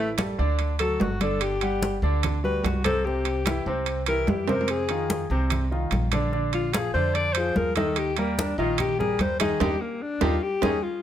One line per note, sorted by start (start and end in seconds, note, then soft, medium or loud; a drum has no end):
0.00 0.33 A1 medium
0.00 0.11 E3 medium
0.00 0.10 A3 medium
0.00 0.11 E4 medium
0.00 0.12 E5 medium
0.18 0.35 G3 medium
0.18 0.35 G4 medium
0.18 0.36 A4 medium
0.18 high conga medium
0.18 high timbale medium
0.38 0.97 D2 medium
0.38 0.72 D3 medium
0.38 0.73 D4 medium
0.38 0.73 D5 medium
0.59 high conga soft
0.59 high timbale medium
0.79 1.14 F#3 medium
0.79 1.14 F#4 medium
0.79 1.03 A4 medium
0.79 1.14 A4 medium
0.79 high conga soft
0.79 high timbale medium
1.00 1.97 G1 medium
1.00 1.23 F#4 medium
1.00 high conga medium
1.00 low timbale medium
1.21 1.54 D3 medium
1.21 1.55 D4 medium
1.21 1.43 A4 loud
1.21 1.55 D5 medium
1.21 high conga medium
1.21 high timbale medium
1.41 2.03 G4 medium
1.41 high conga soft
1.41 high timbale medium
1.61 1.96 G3 medium
1.61 1.96 G4 medium
1.61 1.96 F#5 medium
1.61 high conga soft
1.61 high timbale medium
1.83 high conga medium
2.02 2.60 D2 medium
2.02 2.36 D3 medium
2.02 2.37 D4 medium
2.02 2.37 D5 medium
2.02 high conga soft
2.23 high conga soft
2.23 low conga medium
2.23 high timbale medium
2.44 2.77 G3 medium
2.44 2.77 F#4 medium
2.44 2.77 G4 medium
2.44 2.66 B4 loud
2.44 high conga soft
2.64 3.60 C2 medium
2.64 2.84 F#4 medium
2.64 high conga medium
2.64 high timbale medium
2.64 low timbale medium
2.84 3.01 C3 medium
2.84 3.02 C4 medium
2.84 3.07 A4 loud
2.84 3.02 C5 medium
2.84 high conga medium
2.84 high timbale medium
3.05 3.39 C3 medium
3.05 3.39 C4 medium
3.05 3.67 G4 medium
3.05 3.39 C5 medium
3.05 high conga soft
3.25 high conga soft
3.25 high timbale medium
3.46 3.63 E3 medium
3.46 3.63 E4 medium
3.46 3.64 G4 medium
3.46 high conga medium
3.46 high timbale medium
3.66 4.24 C2 medium
3.66 4.00 C3 medium
3.66 4.00 C4 medium
3.66 4.01 C5 medium
3.86 high conga soft
3.86 high timbale medium
4.06 4.41 E3 medium
4.06 4.41 E4 medium
4.06 4.42 G4 medium
4.06 4.31 A#4 loud
4.06 high conga soft
4.06 high timbale medium
4.27 5.24 F2 medium
4.27 4.51 G4 medium
4.27 high conga medium
4.27 low timbale medium
4.48 4.82 C3 medium
4.48 4.82 C4 medium
4.48 4.72 A#4 medium
4.48 4.82 C5 medium
4.48 high conga medium
4.48 high timbale medium
4.61 low timbale medium
4.68 5.31 G#4 medium
4.68 high conga soft
4.68 high timbale medium
4.89 5.23 D#3 medium
4.89 5.23 D#4 medium
4.89 5.23 F4 medium
4.89 high conga soft
4.89 high timbale medium
5.10 high conga medium
5.30 5.88 C2 medium
5.30 5.64 C3 medium
5.30 5.65 C4 medium
5.30 5.65 C5 medium
5.30 high conga soft
5.50 high conga soft
5.50 low conga medium
5.50 high timbale medium
5.71 6.05 D#3 medium
5.71 6.05 D#4 medium
5.71 6.05 F4 medium
5.71 high conga soft
5.91 6.88 A#1 medium
5.91 high conga medium
5.91 high timbale medium
6.12 6.29 D3 medium
6.12 6.29 D4 medium
6.12 6.30 D5 medium
6.12 high conga medium
6.12 high timbale medium
6.32 6.66 D3 medium
6.32 6.66 D4 medium
6.32 6.66 D5 medium
6.32 high conga soft
6.53 6.75 F4 medium
6.53 high conga soft
6.53 high timbale medium
6.74 6.91 F3 medium
6.74 6.91 F4 medium
6.74 6.93 G#4 medium
6.74 6.91 G#4 medium
6.74 high conga medium
6.74 high timbale medium
6.94 7.52 F2 medium
6.94 7.28 D3 medium
6.94 7.28 D4 medium
6.94 7.16 C5 loud
6.94 7.28 D5 medium
7.14 7.35 D5 loud
7.14 high conga soft
7.14 high timbale medium
7.33 7.70 F3 medium
7.33 7.70 F4 medium
7.33 7.58 C5 loud
7.33 high conga soft
7.33 high timbale medium
7.38 7.70 G#4 medium
7.56 8.52 D#2 medium
7.56 7.75 A#4 loud
7.56 high conga medium
7.76 8.10 D#3 medium
7.76 8.10 D#4 medium
7.76 7.99 A4 medium
7.76 8.10 D#5 medium
7.76 high conga medium
7.76 high timbale medium
7.96 8.17 G4 medium
7.96 high conga soft
7.96 high timbale medium
8.17 8.51 G3 medium
8.17 8.41 A#3 medium
8.17 8.51 G4 medium
8.17 8.51 A#4 medium
8.17 high conga soft
8.17 high timbale medium
8.39 8.58 D4 medium
8.39 high conga loud
8.58 9.15 A#1 medium
8.58 8.92 D#3 medium
8.58 8.92 D#4 medium
8.58 8.81 F4 medium
8.58 8.92 D#5 medium
8.58 high conga soft
8.78 8.99 G4 loud
8.78 high conga soft
8.78 low conga medium
8.78 high timbale medium
8.99 9.32 G3 medium
8.99 9.33 G4 medium
8.99 9.23 G#4 medium
8.99 9.33 A#4 medium
8.99 high conga soft
8.99 low conga medium
9.19 9.57 D#2 medium
9.19 9.39 C5 loud
9.19 high conga medium
9.19 high timbale medium
9.40 9.57 D#3 medium
9.40 9.57 D#4 medium
9.40 9.63 G#4 loud
9.40 9.57 D#5 medium
9.40 high conga medium
9.40 high timbale loud
9.60 9.76 D#2 loud
9.60 9.73 D4 medium
9.60 9.73 D#4 loud
9.60 9.73 G4 loud
9.60 9.83 G4 medium
9.60 high conga loud
9.60 high timbale loud
9.81 10.04 A#3 medium
10.02 10.25 D4 medium
10.21 10.37 D#2 medium
10.21 10.35 D4 loud
10.21 10.35 D#4 loud
10.21 10.44 F4 loud
10.21 10.34 G4 loud
10.21 high conga loud
10.21 high timbale loud
10.43 10.63 G4 medium
10.62 10.78 D#2 loud
10.62 10.75 C#4 medium
10.62 10.75 D#4 loud
10.62 10.75 G4 loud
10.62 10.85 G#4 loud
10.62 high conga loud
10.62 high timbale loud
10.83 11.02 F4 medium